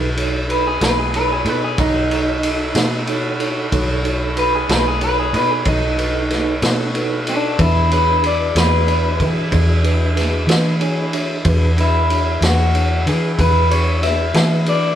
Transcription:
Already playing: B1 A3 B3 F#4
0.17 D#4 F#4 A4 C#5, ride
0.48 D#4 F#4 A4 B4, ride
0.67 G#4
0.81 B1 D#4 F#4 A4 B4, snare, ride
1.00 G#4
1.14 D#4 F#4 A4 B4 C#5, ride
1.32 G#4
1.45 B2 D#4 F#4 A4 B4 D#5, ride
1.64 G#4
1.78 B1 D#4 F#4 A4 C#5, kick, ride
2.11 D#4 F#4 A4 C#5, ride
2.43 D#4 F#4 A4 D#5, ride
2.75 B2 D#4 F#4 A4 D#5, snare, ride
3.07 D#4 F#4 A4 C#5, ride
3.39 D#4 F#4 A4 C#5, ride
3.72 B1 D#4 F#4 A4 C#5, kick, ride
4.04 D#4 F#4 A4 C#5, ride
4.36 D#4 F#4 A4 B4, ride
4.55 G#4
4.68 B1 D#4 F#4 A4 B4 D#5, snare, ride
4.88 G#4
5.01 D#4 F#4 A4 B4 C#5, ride
5.20 G#4
5.33 B2 D#4 F#4 A4 B4 D#5, ride
5.51 G#4
5.65 B1 D#4 F#4 A4 C#5, kick, ride
5.97 D#4 F#4 A4 B4, ride
6.30 D#4 F#4 A4 B4, snare, ride
6.62 B2 D#4 F#4 A4 C#5, snare, ride
6.95 D#4 F#4 A4 B4, ride
7.25 D#4 F#4 A4 D#5, ride
7.29 D4
7.57 E2 G#3 D4 E4 F#4 G#4 B4, kick, ride
7.89 D4 F#4 G#4 B4 C#5, ride
8.22 D4 F#4 G#4 B4, ride
8.27 D5
8.55 E2 D4 F#4 G#4 B4 D5, snare, ride
8.87 D4 F#4 G#4 D5, ride
9.20 E3 D4 F#4 G#4 B4, kick, ride
9.52 E2 D4 F#4 G#4 D5, kick, ride
9.83 D4 F#4 G#4 B4, ride
10.15 D4 F#4 G#4 B4, snare, ride
10.47 E3 D4 F#4 G#4 B4, snare, ride
10.81 D4 F#4 G#4 C#5 G#5, ride
11.13 D4 F#4 G#4 C#5 E5, ride
11.45 E2 G#3 B3 D4 E4 F#4 G#4 B4, kick, ride
11.77 D4 E4 F#4 G#4 B4, ride
12.10 D4 F#4 G#4 C#5, ride
12.41 E2 D4 F#4 G#4 B4, snare, ride
12.45 F#4
12.75 D4 F#4 G#4 C#5, ride
13.06 E3 D4 F#4 G#4 B4, ride
13.39 E2 D4 F#4 G#4 B4, kick, ride
13.70 D4 F#4 G#4 B4 C#5, ride
14.01 D4 F#4 G#4 B4 E5, snare, ride
14.34 E3 D4 F#4 G#4 B4, snare, ride
14.66 D4 F#4 G#4 B4 D5, ride

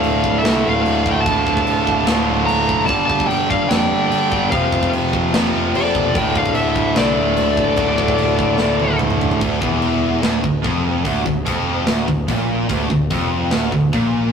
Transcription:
Already playing: D2 A2 D3 D5 F5
0.03 D1, crash
0.24 D1, kick
0.38 E5
0.43 C2 D2 A2 D3 A4, snare, crash
0.66 D1 F5
0.74 D5
0.86 D1, crash
1.06 D1 D2 A2 D3, kick
1.11 E5 G5
1.20 F5 A5
1.25 D1 D2 A2 D3, kick, crash
1.47 D1, kick
1.57 kick
1.66 D1, crash
1.87 D1, kick
2.06 D1 D2 A2 D3, snare, crash
2.28 D1
2.44 F5 A#5
2.49 D1, crash
2.68 F1 D2 A2 D3, kick
2.86 G1 G2 D3 G3 D5 A5, kick, crash
3.06 F5 A5
3.10 G1, kick
3.20 kick
3.27 G1 D5 G5, crash
3.50 G1 D5 F5, kick
3.68 F2 G2 D3 G3 D5 G5, snare, crash
3.91 G1
4.11 G1, crash
4.31 G1 G2 D3 G3, kick
4.50 F1 F2 C3 F3 C5 F5, kick, crash
4.72 F1, kick
4.83 kick
4.93 F1, crash
5.13 F1, kick
5.32 F1 F2 C3 F3, snare, crash
5.54 F1
5.74 F1 A4 D5, crash
5.95 E1 F2 C3 F3, kick
6.13 D1 D2 A2 D3, kick, crash
6.17 D5 G5
6.36 D1 D5 F5, kick
6.46 kick
6.55 D1 A4 E5, crash
6.75 D1, kick
6.95 C2 D2 A2 D3 A4 D5, snare, crash
7.17 D1
7.37 D1, crash
7.57 D1 D2 A2 D3, kick
7.76 D1 D2 A2 D3, kick, crash
7.98 D1, kick
8.08 kick
8.18 D1, crash
8.39 D1, kick
8.58 D1 D2 A2 D3, snare
8.80 D1, high tom
8.99 D1, mid tom
9.10 mid tom
9.21 D1 D2 A2 D3, floor tom
9.31 floor tom
9.40 D1 D2, kick, crash
9.60 E1 E2, kick
9.82 crash
10.22 D1 D2, snare, crash
10.42 D1 D2, kick
10.63 F1 F2, kick, crash
11.04 D1 D2, kick, open hi-hat
11.25 D1 D2, kick
11.46 F1 F2, kick, open hi-hat
11.87 D1 D2, snare, open hi-hat
12.07 D1 D2, kick
12.28 A#1 A#2, kick, open hi-hat
12.69 D1 D2, kick, open hi-hat
12.90 D1 D2, kick
13.10 F1 F2, kick, open hi-hat
13.51 D1 D2, snare, open hi-hat
13.72 D1 D2, kick
13.93 A#1 A#2, kick, open hi-hat

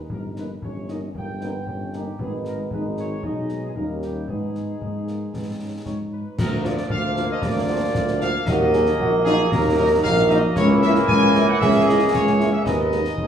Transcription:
Already playing: D#4
0.10 G1 A#4, concert bass drum
0.36 A#3 C#4 D#4 B4, snare
0.62 G1 C#4 C#5, concert bass drum
0.88 A#3 C#4 D#4 D#5, snare
1.15 G1 A#3 G5, concert bass drum
1.41 A#3 B3 C#4 D#4, snare
1.67 G1 C#4, concert bass drum
1.93 A#3 C#4 D#4 G4, snare
2.19 G#1 G#3 B3 D#4 G#4, concert bass drum
2.45 A#4, snare
2.71 G#1 G#3 B3 D#4 B4, concert bass drum
2.97 C#5, snare
3.23 B1 G#3 B3 D#4 D#5, concert bass drum
3.49 snare
3.65 G#4
3.75 D#2 G3 A#3 C#4 D#4 A#4, concert bass drum
4.02 G4, snare
4.28 G#2 G#3 B3 D#4 G#4, concert bass drum
4.55 snare
4.81 G#2 G#3, concert bass drum
5.06 A#3, snare
5.34 G#2 B3, concert bass drum, snare
5.61 C#4
5.85 G#2 D#4 C#5, concert bass drum, snare
6.13 B4
6.38 D2 F3 A#3 A#4, concert bass drum, snare, crash
6.64 F3 A#3 F4 D5, snare
6.77 snare
6.90 D2 D4 F5, concert bass drum
7.16 F3 A#3 F4, snare
7.31 D#5
7.42 D2 F4 D5, concert bass drum, snare
7.68 F3 A#3 F4 F#4
7.95 D2 F4, concert bass drum, snare
8.08 snare
8.20 F3 A#3 D4 F4 F5, snare
8.46 D#2 F#3 A#3 F#4 D#5, concert bass drum, snare, crash
8.72 F#3 A#3 D#4 G#4, snare
8.86 snare
8.99 A#1 F#4, concert bass drum
9.24 F#3 A#3 D#4 F4 G#4, snare
9.50 D#2 D#4 A#4, concert bass drum, snare
9.77 F#3 A#3 D#4 A#4
10.03 A#1 F5, concert bass drum, snare
10.17 snare
10.29 F#3 A#3 D#4 D#5, snare
10.56 C#2 E3 A#3 E4 C#5, concert bass drum, snare, crash
10.82 G#3 A#3 E4 E5, snare
10.95 snare
11.08 C#2 G#5, concert bass drum
11.35 G#3 A#3 E4, snare
11.48 F#5
11.60 C#2 G#4 E5, concert bass drum, snare
11.87 G#3 A#3 E4 D#5
12.13 C#2 C#5, concert bass drum, snare
12.27 snare
12.39 G#3 A#3 E4, snare
12.53 E5
12.65 D#2 G#3 B3 D#4 D#5, concert bass drum, snare, crash
12.91 G#3 B3 D#4, snare
13.05 snare
13.18 D#2 G#3, concert bass drum

